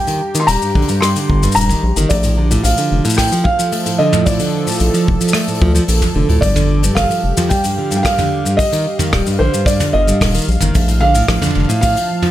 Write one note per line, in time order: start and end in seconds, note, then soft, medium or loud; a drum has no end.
0.00 3.61 G4 medium
0.00 6.42 F5 medium
0.00 0.42 G5 loud
0.07 0.20 D#3 medium
0.07 open hi-hat medium
0.07 shaker medium
0.34 0.47 D#3 medium
0.34 open hi-hat soft
0.34 shaker medium
0.40 0.47 C6 medium
0.47 0.57 D#1 medium
0.47 0.61 G3 medium
0.47 1.03 A#5 loud
0.47 open hi-hat medium
0.47 shaker medium
0.62 0.74 G2 medium
0.62 open hi-hat soft
0.62 shaker soft
0.68 open hi-hat soft
0.75 0.85 A#1 medium
0.75 0.88 D3 medium
0.75 kick loud
0.75 open hi-hat soft
0.82 open hi-hat medium
0.89 1.01 G2 loud
0.89 open hi-hat medium
0.89 shaker medium
1.01 1.14 G2 medium
1.01 1.52 C6 loud
1.01 cross-stick medium
1.01 open hi-hat medium
1.01 shaker medium
1.16 1.42 D3 medium
1.16 open hi-hat medium
1.16 shaker soft
1.30 1.48 G1 loud
1.30 kick loud
1.43 1.68 G2 loud
1.43 open hi-hat soft
1.43 shaker medium
1.52 2.11 A#5 loud
1.52 open hi-hat soft
1.52 shaker medium
1.56 1.75 D#1 medium
1.56 open hi-hat medium
1.56 shaker medium
1.61 open hi-hat soft
1.61 shaker medium
1.70 1.83 D#3 medium
1.70 kick medium
1.70 open hi-hat medium
1.70 shaker medium
1.83 1.93 A#1 medium
1.96 2.06 G1 medium
1.96 2.09 D#3 medium
1.96 shaker medium
2.09 2.58 A#1 medium
2.09 8.59 F3 medium
2.09 2.23 A3 medium
2.09 2.60 D5 medium
2.09 kick loud
2.09 open hi-hat medium
2.09 shaker medium
2.23 2.36 A2 medium
2.23 open hi-hat medium
2.23 shaker medium
2.38 2.50 D3 medium
2.51 2.63 A2 medium
2.51 open hi-hat medium
2.51 shaker medium
2.63 2.74 A#1 medium
2.63 3.19 F5 medium
2.63 open hi-hat medium
2.63 shaker medium
2.77 3.04 D3 medium
2.77 open hi-hat medium
2.77 shaker soft
2.92 3.01 F1 medium
3.04 3.31 A2 loud
3.04 open hi-hat medium
3.04 shaker medium
3.10 7.29 A4 medium
3.10 shaker medium
3.14 3.45 G5 medium
3.14 cross-stick medium
3.14 shaker soft
3.18 kick medium
3.18 open hi-hat medium
3.18 shaker medium
3.18 shaker soft
3.23 shaker soft
3.28 shaker soft
3.32 3.45 F3 medium
3.32 open hi-hat medium
3.32 shaker medium
3.44 3.95 F5 loud
3.44 kick medium
3.59 3.71 F3 medium
3.59 open hi-hat soft
3.59 shaker medium
3.72 3.85 A3 medium
3.72 open hi-hat medium
3.72 shaker medium
3.86 3.98 A2 medium
3.86 open hi-hat medium
3.86 shaker soft
3.99 4.12 D3 medium
3.99 4.24 D#5 medium
4.13 4.25 A2 loud
4.13 mid tom medium
4.13 shaker medium
4.26 4.38 A2 medium
4.26 5.84 D5 medium
4.26 kick loud
4.26 open hi-hat medium
4.26 shaker medium
4.40 4.66 D3 medium
4.40 open hi-hat medium
4.40 shaker medium
4.67 4.93 A2 loud
4.67 open hi-hat medium
4.67 shaker medium
4.69 shaker medium
4.72 shaker medium
4.74 shaker soft
4.76 shaker soft
4.78 shaker soft
4.80 4.90 A#1 medium
4.80 open hi-hat medium
4.80 shaker medium
4.94 5.07 F3 medium
4.94 open hi-hat medium
4.94 shaker medium
5.08 5.17 F1 medium
5.08 kick loud
5.21 5.33 F3 medium
5.21 open hi-hat soft
5.21 shaker medium
5.28 shaker medium
5.33 5.47 A3 medium
5.33 cross-stick medium
5.33 open hi-hat medium
5.48 5.60 A2 medium
5.48 shaker medium
5.55 open hi-hat medium
5.62 5.80 D2 loud
5.62 5.74 F3 loud
5.62 kick loud
5.75 5.83 F3 loud
5.75 open hi-hat soft
5.75 shaker medium
5.88 6.07 A#1 medium
5.88 6.00 A#2 loud
5.88 open hi-hat medium
5.88 shaker medium
6.02 kick medium
6.02 mid tom medium
6.02 open hi-hat medium
6.02 shaker soft
6.15 6.25 F1 loud
6.15 6.28 D3 medium
6.29 6.38 D2 medium
6.29 6.41 A2 medium
6.29 open hi-hat medium
6.41 6.90 G1 medium
6.41 6.55 G2 medium
6.41 6.97 D5 loud
6.41 kick loud
6.41 open hi-hat medium
6.41 shaker medium
6.56 6.82 D3 medium
6.56 11.58 G4 medium
6.56 mid tom medium
6.56 open hi-hat medium
6.56 shaker medium
6.83 7.09 G2 medium
6.83 open hi-hat medium
6.83 shaker medium
6.95 7.06 G1 medium
6.95 7.52 F5 loud
6.95 kick loud
6.95 cross-stick medium
6.95 open hi-hat medium
6.95 shaker medium
7.10 7.23 F3 medium
7.10 open hi-hat medium
7.10 shaker medium
7.24 7.33 F1 medium
7.37 7.49 F3 medium
7.37 12.31 F5 loud
7.37 mid tom medium
7.37 open hi-hat medium
7.37 shaker medium
7.49 7.64 G3 medium
7.49 7.94 G5 loud
7.49 kick loud
7.49 open hi-hat medium
7.49 shaker medium
7.64 7.77 G2 medium
7.64 open hi-hat medium
7.64 shaker medium
7.78 7.91 D3 medium
7.90 8.03 G2 loud
7.90 open hi-hat medium
7.90 shaker medium
7.96 8.04 G5 medium
8.03 8.17 G2 medium
8.03 8.60 F5 loud
8.03 kick loud
8.03 cross-stick loud
8.03 open hi-hat medium
8.03 shaker medium
8.18 8.44 D3 medium
8.18 mid tom medium
8.18 open hi-hat medium
8.18 shaker soft
8.45 8.59 G2 loud
8.45 shaker medium
8.57 9.41 D#5 loud
8.57 kick loud
8.57 open hi-hat medium
8.57 shaker medium
8.72 8.85 D#3 medium
8.72 open hi-hat medium
8.72 shaker medium
8.75 open hi-hat soft
8.78 open hi-hat soft
8.80 open hi-hat soft
8.82 open hi-hat soft
8.84 open hi-hat soft
8.99 9.12 D#3 medium
8.99 mid tom medium
8.99 open hi-hat soft
8.99 shaker medium
9.13 9.22 D#1 medium
9.13 9.26 G3 medium
9.13 kick loud
9.13 cross-stick loud
9.13 open hi-hat medium
9.27 9.39 G2 medium
9.27 open hi-hat medium
9.27 shaker medium
9.39 9.49 A#1 medium
9.39 9.53 D3 medium
9.39 9.65 C5 medium
9.53 9.66 G2 loud
9.53 open hi-hat soft
9.53 shaker medium
9.66 9.79 G2 medium
9.66 9.94 D5 medium
9.66 kick loud
9.66 open hi-hat medium
9.66 shaker medium
9.80 10.06 D3 medium
9.80 mid tom medium
9.80 open hi-hat medium
9.80 shaker medium
9.93 10.13 G1 loud
9.93 10.44 D#5 medium
10.07 10.33 G2 loud
10.07 shaker medium
10.21 10.40 D#1 medium
10.21 kick loud
10.21 cross-stick medium
10.21 open hi-hat medium
10.21 shaker medium
10.26 open hi-hat medium
10.31 open hi-hat medium
10.34 10.47 D#3 medium
10.34 open hi-hat medium
10.34 open hi-hat soft
10.34 shaker medium
10.38 open hi-hat soft
10.38 shaker soft
10.41 open hi-hat soft
10.41 shaker soft
10.45 shaker soft
10.48 10.57 A#1 medium
10.48 shaker soft
10.51 shaker soft
10.55 shaker soft
10.58 mid tom medium
10.58 shaker soft
10.61 10.71 G1 medium
10.61 10.74 D#3 medium
10.61 shaker medium
10.74 11.23 A#1 medium
10.74 12.31 F3 medium
10.74 10.88 A3 medium
10.74 kick medium
10.74 open hi-hat medium
10.74 shaker medium
10.88 11.00 A2 medium
10.88 open hi-hat medium
10.88 shaker medium
11.00 11.15 D3 medium
11.00 11.80 F5 loud
11.14 11.27 A2 loud
11.14 12.31 A5 medium
11.14 open hi-hat medium
11.14 shaker medium
11.28 11.38 A#1 medium
11.28 11.41 A2 medium
11.28 kick loud
11.28 cross-stick medium
11.28 open hi-hat medium
11.42 11.68 D3 medium
11.42 mid tom medium
11.42 open hi-hat medium
11.42 shaker medium
11.46 mid tom medium
11.50 mid tom medium
11.55 11.66 F1 medium
11.55 mid tom soft
11.60 mid tom soft
11.64 mid tom soft
11.69 11.95 A2 loud
11.69 open hi-hat soft
11.69 shaker medium
11.81 12.31 F5 loud
11.81 kick loud
11.81 open hi-hat medium
11.81 shaker medium
11.96 12.09 F3 medium
11.96 open hi-hat medium
11.96 shaker soft
12.22 12.31 F3 medium
12.22 mid tom medium
12.22 open hi-hat soft